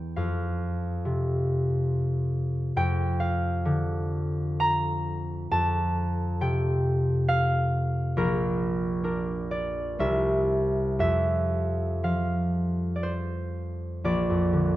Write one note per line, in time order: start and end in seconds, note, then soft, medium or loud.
0.00 0.20 E2 medium
0.00 0.19 E3 soft
0.00 0.20 E5 medium
0.00 0.20 G5 medium
0.16 2.75 F2 medium
0.16 3.19 F5 medium
1.05 2.82 C3 soft
2.76 5.50 F2 medium
2.76 3.51 G5 loud
3.20 7.10 F5 medium
3.65 5.56 D3 soft
4.60 5.56 A#5 loud
5.51 8.20 F2 medium
5.51 8.20 A5 loud
6.41 8.20 C3 soft
6.41 7.90 G5 medium
7.28 10.03 F5 loud
8.17 10.04 A#1 medium
8.17 9.03 A#4 medium
9.04 10.03 D4 soft
9.04 9.98 A#4 soft
9.51 10.04 D5 medium
9.99 11.04 C2 medium
9.99 13.89 C4 soft
9.99 11.04 A#4 soft
9.99 10.99 E5 medium
10.99 14.09 F2 medium
10.99 12.97 E5 medium
12.03 14.77 F3 soft
12.03 12.97 F5 medium
12.96 13.09 D5 medium
13.03 14.08 C5 medium
14.04 14.77 A#1 medium
14.04 14.77 D5 medium
14.30 14.77 F2 soft
14.53 14.77 D3 soft